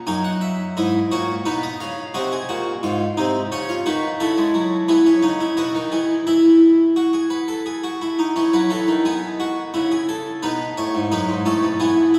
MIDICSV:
0, 0, Header, 1, 2, 480
1, 0, Start_track
1, 0, Tempo, 689655
1, 55, Time_signature, 3, 2, 24, 8
1, 8484, End_track
2, 0, Start_track
2, 0, Title_t, "Harpsichord"
2, 0, Program_c, 0, 6
2, 47, Note_on_c, 0, 80, 75
2, 48, Note_on_c, 0, 42, 64
2, 49, Note_on_c, 0, 63, 65
2, 168, Note_off_c, 0, 80, 0
2, 171, Note_on_c, 0, 78, 75
2, 287, Note_on_c, 0, 76, 64
2, 290, Note_off_c, 0, 78, 0
2, 439, Note_off_c, 0, 76, 0
2, 518, Note_off_c, 0, 42, 0
2, 519, Note_off_c, 0, 63, 0
2, 535, Note_on_c, 0, 44, 65
2, 537, Note_on_c, 0, 64, 63
2, 538, Note_on_c, 0, 75, 69
2, 684, Note_off_c, 0, 44, 0
2, 685, Note_off_c, 0, 64, 0
2, 686, Note_off_c, 0, 75, 0
2, 776, Note_on_c, 0, 46, 65
2, 777, Note_on_c, 0, 66, 63
2, 777, Note_on_c, 0, 73, 70
2, 925, Note_off_c, 0, 46, 0
2, 925, Note_off_c, 0, 66, 0
2, 925, Note_off_c, 0, 73, 0
2, 1013, Note_on_c, 0, 47, 68
2, 1013, Note_on_c, 0, 63, 65
2, 1014, Note_on_c, 0, 71, 77
2, 1131, Note_off_c, 0, 71, 0
2, 1136, Note_on_c, 0, 75, 75
2, 1163, Note_off_c, 0, 47, 0
2, 1252, Note_off_c, 0, 75, 0
2, 1256, Note_on_c, 0, 77, 78
2, 1257, Note_on_c, 0, 49, 65
2, 1404, Note_off_c, 0, 77, 0
2, 1406, Note_off_c, 0, 49, 0
2, 1480, Note_off_c, 0, 63, 0
2, 1492, Note_on_c, 0, 48, 73
2, 1492, Note_on_c, 0, 66, 87
2, 1495, Note_on_c, 0, 75, 74
2, 1610, Note_off_c, 0, 66, 0
2, 1615, Note_on_c, 0, 68, 83
2, 1642, Note_off_c, 0, 48, 0
2, 1731, Note_off_c, 0, 68, 0
2, 1733, Note_on_c, 0, 66, 80
2, 1735, Note_on_c, 0, 46, 67
2, 1882, Note_off_c, 0, 66, 0
2, 1884, Note_off_c, 0, 46, 0
2, 1971, Note_on_c, 0, 44, 76
2, 1972, Note_on_c, 0, 65, 84
2, 2120, Note_off_c, 0, 44, 0
2, 2121, Note_off_c, 0, 65, 0
2, 2209, Note_on_c, 0, 63, 82
2, 2211, Note_on_c, 0, 48, 80
2, 2358, Note_off_c, 0, 63, 0
2, 2359, Note_off_c, 0, 48, 0
2, 2423, Note_off_c, 0, 75, 0
2, 2448, Note_on_c, 0, 49, 83
2, 2449, Note_on_c, 0, 61, 93
2, 2450, Note_on_c, 0, 73, 82
2, 2566, Note_off_c, 0, 61, 0
2, 2568, Note_on_c, 0, 65, 88
2, 2596, Note_off_c, 0, 49, 0
2, 2598, Note_off_c, 0, 73, 0
2, 2685, Note_off_c, 0, 65, 0
2, 2686, Note_on_c, 0, 66, 88
2, 2687, Note_on_c, 0, 51, 81
2, 2689, Note_on_c, 0, 71, 76
2, 2835, Note_off_c, 0, 51, 0
2, 2835, Note_off_c, 0, 66, 0
2, 2836, Note_off_c, 0, 71, 0
2, 2925, Note_on_c, 0, 69, 75
2, 2926, Note_on_c, 0, 49, 90
2, 2927, Note_on_c, 0, 64, 80
2, 3042, Note_off_c, 0, 49, 0
2, 3046, Note_on_c, 0, 56, 95
2, 3161, Note_off_c, 0, 56, 0
2, 3162, Note_on_c, 0, 54, 81
2, 3310, Note_off_c, 0, 54, 0
2, 3388, Note_off_c, 0, 69, 0
2, 3389, Note_off_c, 0, 64, 0
2, 3399, Note_on_c, 0, 52, 95
2, 3399, Note_on_c, 0, 59, 77
2, 3402, Note_on_c, 0, 68, 77
2, 3517, Note_off_c, 0, 59, 0
2, 3523, Note_on_c, 0, 61, 72
2, 3548, Note_off_c, 0, 52, 0
2, 3637, Note_on_c, 0, 49, 77
2, 3637, Note_on_c, 0, 63, 68
2, 3639, Note_off_c, 0, 61, 0
2, 3755, Note_off_c, 0, 63, 0
2, 3761, Note_on_c, 0, 64, 66
2, 3787, Note_off_c, 0, 49, 0
2, 3867, Note_off_c, 0, 68, 0
2, 3876, Note_on_c, 0, 47, 84
2, 3877, Note_on_c, 0, 75, 72
2, 3878, Note_off_c, 0, 64, 0
2, 3879, Note_on_c, 0, 66, 78
2, 3996, Note_off_c, 0, 47, 0
2, 4001, Note_on_c, 0, 51, 75
2, 4029, Note_off_c, 0, 66, 0
2, 4118, Note_off_c, 0, 51, 0
2, 4118, Note_on_c, 0, 68, 63
2, 4123, Note_on_c, 0, 52, 73
2, 4269, Note_off_c, 0, 68, 0
2, 4272, Note_off_c, 0, 52, 0
2, 4347, Note_off_c, 0, 75, 0
2, 4363, Note_on_c, 0, 52, 69
2, 4363, Note_on_c, 0, 64, 61
2, 4364, Note_on_c, 0, 76, 64
2, 4833, Note_off_c, 0, 64, 0
2, 4846, Note_on_c, 0, 66, 64
2, 4964, Note_off_c, 0, 66, 0
2, 4965, Note_on_c, 0, 68, 58
2, 5082, Note_on_c, 0, 71, 63
2, 5084, Note_off_c, 0, 68, 0
2, 5204, Note_off_c, 0, 71, 0
2, 5207, Note_on_c, 0, 69, 55
2, 5327, Note_off_c, 0, 69, 0
2, 5331, Note_on_c, 0, 68, 66
2, 5450, Note_off_c, 0, 68, 0
2, 5454, Note_on_c, 0, 66, 62
2, 5547, Note_off_c, 0, 52, 0
2, 5548, Note_off_c, 0, 76, 0
2, 5572, Note_off_c, 0, 66, 0
2, 5579, Note_on_c, 0, 64, 60
2, 5695, Note_off_c, 0, 64, 0
2, 5699, Note_on_c, 0, 63, 60
2, 5815, Note_off_c, 0, 63, 0
2, 5818, Note_on_c, 0, 61, 79
2, 5819, Note_on_c, 0, 52, 78
2, 5935, Note_off_c, 0, 52, 0
2, 5939, Note_on_c, 0, 71, 93
2, 5941, Note_on_c, 0, 54, 80
2, 6055, Note_on_c, 0, 52, 70
2, 6056, Note_off_c, 0, 71, 0
2, 6057, Note_off_c, 0, 54, 0
2, 6059, Note_on_c, 0, 69, 79
2, 6174, Note_off_c, 0, 52, 0
2, 6180, Note_on_c, 0, 51, 73
2, 6208, Note_off_c, 0, 69, 0
2, 6285, Note_off_c, 0, 61, 0
2, 6300, Note_on_c, 0, 59, 71
2, 6301, Note_on_c, 0, 68, 85
2, 6450, Note_off_c, 0, 68, 0
2, 6541, Note_on_c, 0, 66, 84
2, 6690, Note_off_c, 0, 66, 0
2, 6762, Note_off_c, 0, 51, 0
2, 6779, Note_on_c, 0, 49, 81
2, 6779, Note_on_c, 0, 64, 91
2, 6895, Note_off_c, 0, 64, 0
2, 6901, Note_on_c, 0, 68, 84
2, 7016, Note_off_c, 0, 68, 0
2, 7021, Note_on_c, 0, 69, 83
2, 7169, Note_off_c, 0, 69, 0
2, 7231, Note_off_c, 0, 59, 0
2, 7243, Note_off_c, 0, 49, 0
2, 7256, Note_on_c, 0, 71, 85
2, 7258, Note_on_c, 0, 47, 78
2, 7258, Note_on_c, 0, 63, 75
2, 7405, Note_off_c, 0, 71, 0
2, 7406, Note_off_c, 0, 47, 0
2, 7499, Note_on_c, 0, 73, 81
2, 7500, Note_on_c, 0, 45, 64
2, 7615, Note_off_c, 0, 45, 0
2, 7619, Note_on_c, 0, 44, 68
2, 7647, Note_off_c, 0, 73, 0
2, 7722, Note_off_c, 0, 63, 0
2, 7734, Note_off_c, 0, 44, 0
2, 7736, Note_on_c, 0, 42, 73
2, 7737, Note_on_c, 0, 63, 76
2, 7738, Note_on_c, 0, 71, 89
2, 7852, Note_off_c, 0, 42, 0
2, 7857, Note_on_c, 0, 44, 72
2, 7884, Note_off_c, 0, 63, 0
2, 7885, Note_off_c, 0, 71, 0
2, 7972, Note_off_c, 0, 44, 0
2, 7973, Note_on_c, 0, 61, 74
2, 7975, Note_on_c, 0, 45, 74
2, 7976, Note_on_c, 0, 69, 85
2, 8091, Note_off_c, 0, 45, 0
2, 8091, Note_on_c, 0, 47, 68
2, 8121, Note_off_c, 0, 61, 0
2, 8123, Note_off_c, 0, 69, 0
2, 8208, Note_off_c, 0, 47, 0
2, 8211, Note_on_c, 0, 59, 81
2, 8211, Note_on_c, 0, 68, 94
2, 8213, Note_on_c, 0, 52, 80
2, 8359, Note_off_c, 0, 59, 0
2, 8450, Note_on_c, 0, 64, 76
2, 8484, Note_off_c, 0, 52, 0
2, 8484, Note_off_c, 0, 64, 0
2, 8484, Note_off_c, 0, 68, 0
2, 8484, End_track
0, 0, End_of_file